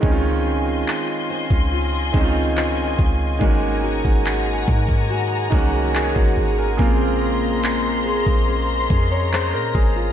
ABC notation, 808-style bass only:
X:1
M:4/4
L:1/16
Q:1/4=71
K:Db
V:1 name="808-style bass" clef=bass
D,,4 z3 D,,3 D,,4 D,,2 | A,,,3 A,,,3 A,,4 C,,3 A,,, A,,,2 | B,,,6- B,,, B,,,3 F,,3 B,, A,,,2 |]